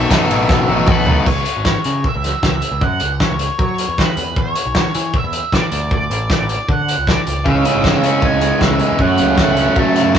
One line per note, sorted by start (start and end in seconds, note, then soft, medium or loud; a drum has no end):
0.00 0.28 F#2 medium
0.00 0.69 B2 medium
0.00 0.10 F#3 medium
0.00 0.10 A3 medium
0.00 0.11 B3 medium
0.00 0.11 D#4 medium
0.00 0.12 A4 medium
0.00 0.89 E5 loud
0.10 0.88 B2 medium
0.10 0.88 D#3 medium
0.10 0.71 F#3 medium
0.10 0.68 A3 medium
0.10 0.70 B3 loud
0.10 0.69 D#4 medium
0.10 0.68 A4 loud
0.10 kick loud
0.10 snare loud
0.10 ride medium
0.30 0.48 A1 medium
0.30 1.27 F#4 medium
0.30 ride medium
0.49 0.67 A1 medium
0.49 kick loud
0.49 snare medium
0.68 0.86 A1 medium
0.68 1.08 A3 medium
0.68 0.88 B3 medium
0.68 0.88 D#4 medium
0.68 0.89 A4 medium
0.68 high tom medium
0.72 0.87 F#3 medium
0.87 1.05 B1 medium
0.87 1.27 E3 medium
0.87 1.07 F#3 medium
0.87 1.07 B3 medium
0.87 1.06 D#4 medium
0.87 1.28 B4 medium
0.87 kick loud
0.87 mid tom medium
0.91 1.05 A4 medium
1.06 1.25 C#2 medium
1.06 1.27 F#3 medium
1.06 1.28 A3 medium
1.06 1.26 B3 medium
1.06 1.26 D#4 medium
1.06 1.25 A4 medium
1.06 floor tom medium
1.26 1.44 C#2 medium
1.26 1.65 C#5 medium
1.26 kick loud
1.26 crash medium
1.46 closed hi-hat medium
1.57 1.74 G#1 medium
1.65 2.06 C#5 medium
1.65 kick medium
1.65 snare medium
1.84 2.03 C#3 medium
1.84 closed hi-hat medium
2.04 2.42 E5 medium
2.04 kick medium
2.15 2.32 C#2 medium
2.24 snare soft
2.24 closed hi-hat medium
2.43 2.61 C#2 medium
2.43 2.85 E5 medium
2.43 kick loud
2.43 snare loud
2.62 closed hi-hat medium
2.71 2.81 C#2 medium
2.81 2.99 F#2 medium
2.81 3.22 F#5 medium
2.81 kick loud
3.00 3.19 C#2 medium
3.00 closed hi-hat medium
3.20 3.61 C#5 medium
3.20 kick medium
3.20 snare medium
3.30 3.48 C#2 medium
3.39 closed hi-hat medium
3.59 3.85 F#3 medium
3.59 kick loud
3.63 4.01 C#5 medium
3.78 closed hi-hat medium
3.88 4.06 E2 medium
3.98 4.35 B4 medium
3.98 kick loud
3.98 snare loud
4.17 4.35 E2 medium
4.17 closed hi-hat medium
4.36 4.54 E2 medium
4.36 4.77 C#5 medium
4.36 kick loud
4.56 closed hi-hat medium
4.65 4.83 B1 medium
4.75 5.17 C#5 medium
4.75 kick medium
4.75 snare loud
4.95 5.13 E3 medium
4.95 closed hi-hat medium
5.14 5.52 E5 medium
5.14 kick loud
5.24 5.41 E2 medium
5.33 closed hi-hat medium
5.52 5.62 E2 medium
5.52 5.92 D5 medium
5.52 kick loud
5.52 snare loud
5.71 6.06 D2 medium
5.71 closed hi-hat medium
5.91 6.28 D5 medium
5.91 kick loud
6.10 6.28 A1 medium
6.10 closed hi-hat medium
6.30 6.68 D5 medium
6.30 kick loud
6.30 snare medium
6.40 6.57 A1 medium
6.49 closed hi-hat medium
6.69 6.95 D3 medium
6.69 7.10 F#5 medium
6.69 kick loud
6.88 closed hi-hat medium
6.98 7.15 C#2 medium
7.07 7.44 D5 medium
7.07 kick loud
7.07 snare medium
7.27 7.44 C#2 medium
7.27 closed hi-hat medium
7.45 7.63 C#2 medium
7.45 7.65 C#3 medium
7.45 8.99 C#3 medium
7.45 9.00 E3 medium
7.45 9.01 G#3 medium
7.45 9.01 C#4 medium
7.45 7.86 E5 medium
7.45 kick loud
7.65 8.40 C#3 medium
7.65 closed hi-hat medium
7.75 7.92 G#1 medium
7.84 8.21 G#3 medium
7.84 8.25 E5 medium
7.84 kick medium
7.84 snare loud
8.03 8.21 C#3 medium
8.03 9.00 C#4 medium
8.03 closed hi-hat medium
8.22 8.80 G#3 medium
8.22 8.62 G#5 loud
8.22 kick loud
8.32 8.50 C#2 medium
8.41 9.00 C#3 medium
8.41 closed hi-hat medium
8.60 8.79 C#2 medium
8.60 8.99 E3 medium
8.60 9.00 E5 medium
8.60 kick loud
8.60 snare medium
8.79 9.00 G#3 medium
8.79 closed hi-hat medium
8.91 8.99 E2 medium
8.99 10.19 F#2 medium
8.99 9.17 F#2 loud
8.99 9.96 F#2 medium
8.99 10.19 C#3 medium
8.99 10.19 F#3 medium
8.99 10.19 A3 medium
8.99 10.19 C#4 medium
8.99 9.40 F#5 medium
8.99 kick loud
9.18 9.37 C#2 medium
9.18 9.95 C#3 medium
9.18 closed hi-hat medium
9.38 9.77 A3 medium
9.38 9.79 F#5 medium
9.38 kick loud
9.38 snare loud
9.48 9.65 C#2 medium
9.57 10.19 C#4 medium
9.57 closed hi-hat medium
9.76 10.02 F#3 medium
9.76 10.19 A3 medium
9.76 10.17 A5 loud
9.76 kick loud
9.96 10.19 C#3 medium
9.96 snare soft
9.96 closed hi-hat medium
10.05 10.19 F#2 medium
10.15 10.19 F#3 medium
10.15 kick loud
10.15 snare loud